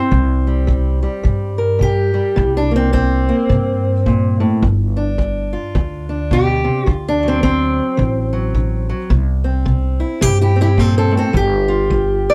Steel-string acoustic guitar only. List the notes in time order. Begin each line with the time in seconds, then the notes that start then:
Already playing: C4
0.11 C3
0.47 G3
0.67 C3
1.03 G3
1.23 C3
1.58 A#4
1.79 C3 G4
2.14 G3
2.36 C3
2.57 D4
2.71 A#3
2.76 C4
2.93 C3 C4
3.29 A#3
3.49 C3
4.06 A#2
4.40 A2
4.62 G2
4.97 D4
5.18 G2
5.53 F4
5.75 G2
6.09 D4
6.31 B2 G4
6.64 C3
6.86 D3 F4
7.08 D4
7.23 F#3
7.28 C4
7.43 D3 C4
7.97 D3
8.33 F#3
8.55 D3
8.89 F#3
9.10 C3
9.44 C4
9.65 C3
10.00 E4
10.21 C3 E4 G4
10.41 E4 G4
10.56 C4
10.61 E4 G4
10.77 A#2 C4 A4
10.98 C4 A4
11.11 A2
11.17 C4 A4
11.33 G3 G4
11.68 F4
11.91 G3
12.30 D5